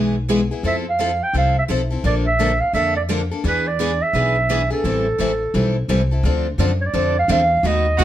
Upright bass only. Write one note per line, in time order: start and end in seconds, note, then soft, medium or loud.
0.00 0.49 B1 medium
0.63 1.19 F2 medium
1.33 1.63 C2 medium
1.69 1.99 B1 medium
2.04 2.60 A#1 medium
2.73 3.30 F2 medium
3.44 4.00 E2 medium
4.13 4.70 B1 medium
4.84 5.12 A1 medium
5.19 5.49 A1 medium
5.54 5.84 B1 medium
5.88 6.19 C2 medium
6.23 6.57 D2 medium
6.58 6.93 F#2 medium
6.94 7.28 F2 medium
7.28 7.63 E2 medium
7.63 7.98 D#2 medium
7.99 8.04 C#2 medium